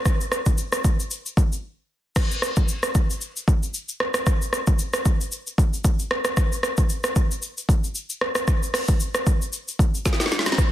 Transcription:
0.06 kick, cross-stick, shaker
0.21 shaker
0.32 cross-stick, shaker
0.46 kick, shaker
0.58 shaker
0.72 cross-stick, shaker
0.84 kick, shaker
1.00 shaker
1.11 shaker
1.26 shaker
1.37 kick, shaker
1.52 shaker
2.16 kick, cross-stick, crash, shaker
2.31 shaker
2.42 cross-stick, shaker
2.56 kick, shaker
2.68 shaker
2.83 cross-stick, shaker
2.95 kick, shaker
3.10 shaker
3.21 shaker
3.36 shaker
3.48 kick, shaker
3.63 shaker
3.74 shaker
3.89 shaker
4.00 cross-stick
4.14 cross-stick, shaker
4.27 kick, cross-stick, shaker
4.42 shaker
4.53 cross-stick, shaker
4.67 kick, shaker
4.79 shaker
4.93 cross-stick, shaker
5.05 kick, shaker
5.21 shaker
5.32 shaker
5.47 shaker
5.58 kick, shaker
5.73 shaker
5.84 kick, shaker
5.99 shaker
6.11 cross-stick
6.25 cross-stick, shaker
6.37 kick, cross-stick, shaker
6.52 shaker
6.63 cross-stick, shaker
6.77 kick, shaker
6.89 shaker
7.04 cross-stick, shaker
7.16 kick, shaker
7.31 shaker
7.42 shaker
7.57 shaker
7.69 kick, shaker
7.84 shaker
7.95 shaker
8.10 shaker
8.21 cross-stick
8.35 cross-stick, shaker
8.48 kick, cross-stick, shaker
8.63 shaker
8.74 cross-stick, open hi-hat, shaker
8.88 kick, shaker
9.00 shaker
9.15 cross-stick, shaker
9.27 kick, shaker
9.42 shaker
9.53 shaker
9.68 shaker
9.79 kick, shaker
9.94 shaker
10.05 kick, snare, shaker
10.13 snare
10.20 snare, shaker
10.26 snare
10.32 snare, shaker
10.39 snare
10.46 snare, shaker
10.52 snare
10.58 kick, cross-stick, shaker

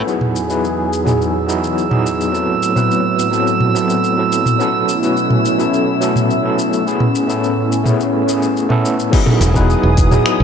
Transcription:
0.06 E2 F#3 B3 D#4 E4 G#4 E6, shaker
0.21 mid tom
0.36 shaker
0.48 F#3 B3 D#4 E4 B4, shaker
0.65 shaker
0.93 shaker
1.04 F#3 B3 D#4 E4 G#4, mid tom, shaker
1.22 shaker
1.47 F#3 B3 D#4 E4 G#4, shaker
1.64 shaker
1.78 shaker
1.90 F#3 B3 D#4 E4 G#4, mid tom
2.06 shaker
2.21 shaker
2.32 A2 F#3 B3 C4 E4 A4, shaker
2.63 shaker
2.75 F#3 B3 C4 E4 B4, mid tom, shaker
2.91 shaker
3.19 shaker
3.31 F#3 B3 C4 E4 A4, shaker
3.47 shaker
3.60 mid tom
3.74 F#3 B3 C4 E4 A4, shaker
3.90 shaker
4.04 shaker
4.16 F#3 B3 C4 E4 A4
4.32 shaker
4.46 mid tom, shaker
4.59 B2 F#3 A3 B3 C#4 E4 A4, shaker
4.89 shaker
5.02 F#3 B3 C#4 E4 B4, shaker
5.17 shaker
5.30 mid tom
5.46 shaker
5.58 F#3 B3 C#4 E4 A4, shaker
5.74 shaker
6.00 F#3 B3 C#4 E4 A4, shaker
6.16 mid tom, shaker
6.30 shaker
6.43 F#3 B3 C#4 E4 A4
6.59 shaker
6.73 shaker
6.85 A2 A3 B3 C#4 E4 G#4, shaker
7.00 mid tom
7.15 shaker
7.27 A3 B3 C#4 E4 A4, shaker
7.44 shaker
7.72 shaker
7.84 A3 B3 C#4 E4 G#4, mid tom, shaker
8.00 shaker
8.26 A3 B3 C#4 E4 G#4, shaker
8.43 shaker
8.57 shaker
8.69 A3 B3 C#4 E4 A4, mid tom
8.85 shaker
9.00 shaker
9.11 F#3 B3 D#4 E4 G#4 D#6, kick, crash, shaker
9.26 mid tom, high bongo
9.41 E1, open hi-hat, high bongo, shaker
9.54 F#3 B3 D#4 E4 B4, kick, shaker
9.70 shaker
9.83 E1
9.97 kick, open hi-hat, shaker
10.11 F#3 B3 D#4 E4 G#4, mid tom, shaker
10.26 finger snap, shaker
10.40 B1

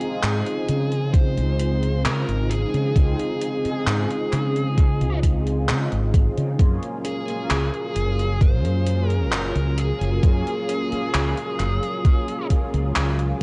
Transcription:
Already playing: C#3 G#3 C4 D#4 F4 G#4
0.00 C4 D#4 F4 G#4, closed hi-hat
0.23 G#2, clap, closed hi-hat
0.46 closed hi-hat
0.69 C#3, closed hi-hat
0.92 closed hi-hat
1.14 C5, kick, closed hi-hat
1.37 C#2, closed hi-hat
1.59 closed hi-hat
1.83 closed hi-hat
2.05 C#3 A#4, clap, closed hi-hat
2.28 G#1, closed hi-hat
2.50 G#4, closed hi-hat
2.74 C#3, closed hi-hat
2.95 C#2 C4 D#4 F4 G#4, kick, closed hi-hat
3.19 closed hi-hat
3.41 closed hi-hat
3.63 C4 D#4 F4 G#4, muted fretless electric bass stroke, closed hi-hat
3.86 G#2, clap, closed hi-hat
4.10 closed hi-hat
4.32 C#3, clap, closed hi-hat
4.56 closed hi-hat
4.78 kick, closed hi-hat
5.01 C#2, closed hi-hat
5.23 kick, closed hi-hat
5.47 closed hi-hat
5.69 C#3, clap, closed hi-hat
5.92 G#1, closed hi-hat
6.14 kick, closed hi-hat
6.38 C#3, closed hi-hat
6.58 F#2 F#3 A#3 C#4 F4 G#4 A#4, kick, closed hi-hat
6.83 closed hi-hat
7.05 G#4, closed hi-hat
7.27 A#3 C#4 F4 G#4, closed hi-hat
7.50 C#2, clap, closed hi-hat
7.74 closed hi-hat
7.96 F#1, closed hi-hat
8.19 closed hi-hat
8.41 C5, kick, closed hi-hat
8.64 F#2, closed hi-hat
8.87 closed hi-hat
9.09 A#4, closed hi-hat
9.32 F#1 A#4, clap, closed hi-hat
9.55 C#2, closed hi-hat
9.78 G#4, closed hi-hat
10.01 F#1, closed hi-hat
10.22 F#2 A#3 C#4 F4 G#4, kick, closed hi-hat
10.47 closed hi-hat
10.69 closed hi-hat
10.89 A#3 C#4 F4 G#4, muted fretless electric bass stroke, closed hi-hat
11.14 C#2, clap, closed hi-hat
11.37 closed hi-hat
11.59 F#1, clap, closed hi-hat
11.83 closed hi-hat
12.05 kick, closed hi-hat
12.28 closed hi-hat
12.50 kick, closed hi-hat
12.74 C#2, closed hi-hat
12.96 C#2, clap, closed hi-hat
13.19 closed hi-hat

